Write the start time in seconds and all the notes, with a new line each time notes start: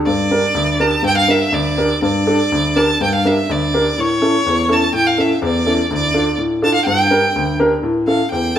0.06 G2 D5
0.31 D4 G4 A#4
0.54 D2
0.80 D4 G4 A#4 A5
1.03 G2 G5
1.17 F5
1.28 D4 G4 A#4 E5
1.52 D2 D5
1.78 D4 G4 A#4
2.02 G2 D5
2.27 D4 G4 A4
2.52 D2
2.76 D4 G4 A#4 A5
3.01 G2 G5
3.15 F5
3.25 D4 G4 A#4 E5
3.49 D2 D5
3.74 D4 G4 A#4
3.98 A2 C#5
4.22 C#4 E4 A4
4.46 E2
4.69 C#4 E4 A4 A5
4.93 A2 G5
5.07 F5
5.18 C#4 E4 A4 E5
5.42 E2 D5
5.66 C#4 E4 A4
5.90 D2
5.94 D5
6.14 D4 F4 A4
6.38 A2
6.62 D4 F4 A4 A5
6.74 F5
6.85 G2 G5
7.11 D4 G4 A#4
7.36 D2
7.60 D4 G4 A#4
7.83 A2
8.07 C#4 E4 A4 F5
8.31 E2 G5
8.56 A5